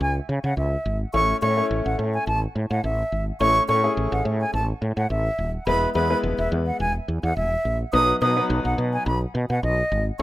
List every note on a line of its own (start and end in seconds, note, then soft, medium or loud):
0.01 0.19 C#2 medium
0.01 0.13 G#5 medium
0.29 0.39 C#3 medium
0.44 0.53 C#3 loud
0.44 0.55 F#5 medium
0.57 0.76 C#2 medium
0.57 0.98 E5 medium
0.86 1.04 G#1 medium
1.14 1.32 A1 loud
1.14 1.34 A3 medium
1.14 1.34 C#4 medium
1.14 1.34 E4 medium
1.14 1.34 C#5 medium
1.14 1.37 C#6 loud
1.42 1.61 A2 loud
1.42 1.52 A3 medium
1.42 1.53 C#4 medium
1.42 1.53 E4 medium
1.42 1.53 C#5 medium
1.42 1.65 C#6 medium
1.57 2.35 A3 medium
1.57 2.35 C#4 medium
1.57 2.35 E4 medium
1.57 2.35 C#5 medium
1.71 1.80 A1 loud
1.85 1.94 A1 medium
1.85 1.96 F#5 medium
1.99 2.17 A2 loud
2.14 2.25 G#5 medium
2.27 2.46 A1 medium
2.27 2.39 A5 medium
2.56 2.65 A2 loud
2.71 2.79 A2 loud
2.71 2.81 F#5 medium
2.84 3.02 A1 medium
2.84 3.25 E5 medium
3.12 3.31 G#1 medium
3.40 3.59 A1 loud
3.40 3.60 A3 medium
3.40 3.60 C#4 medium
3.40 3.60 E4 medium
3.40 3.61 C#5 medium
3.40 3.64 C#6 loud
3.69 3.87 A2 loud
3.69 3.79 A3 medium
3.69 3.79 C#4 medium
3.69 3.79 E4 medium
3.69 3.79 C#5 medium
3.69 3.92 C#6 medium
3.83 4.61 A3 medium
3.83 4.61 C#4 medium
3.83 4.61 E4 medium
3.83 4.61 G#4 medium
3.97 4.07 A1 loud
4.12 4.21 A1 loud
4.12 4.23 F#5 medium
4.25 4.44 A2 loud
4.40 4.51 G#5 medium
4.54 4.72 A1 loud
4.54 4.66 A5 medium
4.82 4.92 A2 loud
4.97 5.05 A2 loud
4.97 5.08 F#5 medium
5.10 5.29 A1 medium
5.10 5.51 E5 medium
5.38 5.57 D#1 medium
5.67 5.85 E1 loud
5.67 5.87 G#3 medium
5.67 5.87 B3 medium
5.67 5.87 E4 medium
5.67 5.87 B4 medium
5.67 5.90 B5 loud
5.95 6.13 E2 loud
5.95 6.05 G#3 medium
5.95 6.05 B3 medium
5.95 6.06 E4 medium
5.95 6.06 B4 medium
5.95 6.18 B5 medium
6.10 6.87 G#3 medium
6.10 6.88 B3 medium
6.10 6.88 E4 medium
6.10 6.88 B4 medium
6.23 6.33 E1 loud
6.38 6.47 E1 loud
6.38 6.49 E5 medium
6.52 6.70 E2 loud
6.66 6.77 F#5 medium
6.80 6.98 E1 loud
6.80 6.92 G#5 medium
7.08 7.18 E2 medium
7.23 7.32 E2 medium
7.23 7.34 F#5 medium
7.37 7.55 E1 medium
7.37 7.77 E5 medium
7.65 7.83 A#1 medium
7.93 8.12 B1 loud
7.93 8.13 F#3 medium
7.93 8.13 B3 medium
7.93 8.13 D#4 medium
7.93 8.13 B4 medium
7.93 8.16 D#6 loud
8.21 8.40 B2 loud
8.21 8.32 F#3 medium
8.21 8.32 B3 medium
8.21 8.32 D#4 medium
8.21 8.32 B4 medium
8.21 8.45 D#6 medium
8.36 9.14 F#3 medium
8.36 9.14 B3 medium
8.36 9.14 D#4 medium
8.36 9.14 B4 medium
8.50 8.60 B1 loud
8.65 8.73 B1 medium
8.65 8.76 F#5 medium
8.78 8.96 B2 loud
8.93 9.04 G#5 medium
9.06 9.25 B1 loud
9.06 9.19 B5 medium
9.35 9.44 B2 loud
9.50 9.58 B2 loud
9.50 9.61 F#5 medium
9.63 9.81 B1 loud
9.63 10.04 D#5 medium
9.92 10.10 G#1 loud